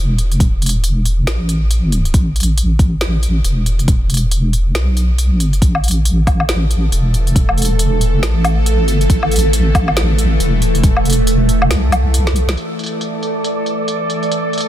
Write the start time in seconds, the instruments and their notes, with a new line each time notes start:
Already playing: wobble bass E1
0.18 closed hi-hat
0.32 closed hi-hat
0.40 kick, closed hi-hat
0.62 closed hi-hat
0.66 closed hi-hat
0.69 closed hi-hat
0.84 closed hi-hat
1.05 closed hi-hat
1.27 wobble bass A1, snare, closed hi-hat
1.49 closed hi-hat
1.71 closed hi-hat
1.92 closed hi-hat
2.05 closed hi-hat
2.14 wobble bass A1, kick, closed hi-hat
2.36 closed hi-hat
2.40 closed hi-hat
2.43 closed hi-hat
2.58 closed hi-hat
2.79 kick, closed hi-hat
3.01 snare, closed hi-hat
3.23 closed hi-hat
3.44 wobble bass E1, closed hi-hat
3.66 closed hi-hat
3.79 closed hi-hat
3.88 kick, closed hi-hat
4.10 closed hi-hat
4.14 closed hi-hat
4.17 closed hi-hat
4.31 closed hi-hat
4.53 closed hi-hat
4.75 wobble bass B1, snare, closed hi-hat
4.97 closed hi-hat
5.18 closed hi-hat
5.40 closed hi-hat
5.53 closed hi-hat
5.62 wobble bass A1, synth drone E3 A3 A4, kick, closed hi-hat
5.75 low woodblock
5.84 closed hi-hat
5.88 closed hi-hat
5.91 closed hi-hat
6.05 closed hi-hat
6.27 kick, closed hi-hat, low woodblock
6.40 low woodblock
6.49 snare, closed hi-hat
6.71 closed hi-hat
6.92 wobble bass E1, closed hi-hat
7.14 closed hi-hat
7.27 closed hi-hat
7.36 kick, closed hi-hat
7.49 low woodblock
7.58 closed hi-hat
7.62 closed hi-hat
7.65 closed hi-hat
7.79 closed hi-hat
8.01 closed hi-hat
8.23 wobble bass A1, snare, closed hi-hat
8.45 closed hi-hat, low woodblock
8.66 closed hi-hat
8.83 wobble bass G#1
8.88 closed hi-hat
9.01 closed hi-hat
9.10 wobble bass A1, kick, closed hi-hat
9.23 low woodblock
9.31 closed hi-hat
9.36 closed hi-hat
9.39 closed hi-hat
9.53 closed hi-hat
9.75 kick, closed hi-hat, low woodblock
9.88 low woodblock
9.97 snare, closed hi-hat
10.18 closed hi-hat
10.40 wobble bass E1, closed hi-hat
10.62 closed hi-hat
10.75 closed hi-hat
10.84 kick, closed hi-hat
10.97 low woodblock
11.05 closed hi-hat
11.10 closed hi-hat
11.13 closed hi-hat
11.27 closed hi-hat
11.49 closed hi-hat
11.62 low woodblock
11.70 wobble bass C2, snare, closed hi-hat
11.92 closed hi-hat, low woodblock
12.14 closed hi-hat
12.27 snare
12.36 closed hi-hat
12.49 snare, closed hi-hat
12.57 synth drone E3 A3 A4, synth texture D5, closed hi-hat
12.79 closed hi-hat
12.84 closed hi-hat
12.86 closed hi-hat
13.01 closed hi-hat
13.23 closed hi-hat
13.44 closed hi-hat
13.66 closed hi-hat
13.88 closed hi-hat
14.10 closed hi-hat
14.23 closed hi-hat
14.32 closed hi-hat
14.53 closed hi-hat
14.58 closed hi-hat
14.60 closed hi-hat